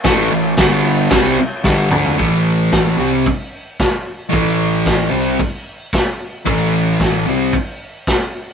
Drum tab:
CC |x---x---x-------|----------------|----------------|----------------|
HH |----------------|o---o---o---o---|o---o---o---o---|o---o---o---o---|
SD |o---o---o---o---|----o-------o---|----o-------o---|----o-------o---|
T2 |--------------o-|----------------|----------------|----------------|
FT |---------------o|----------------|----------------|----------------|
BD |o---o---o---o---|o---o---o---o---|o---o---o---o---|o---o---o---o---|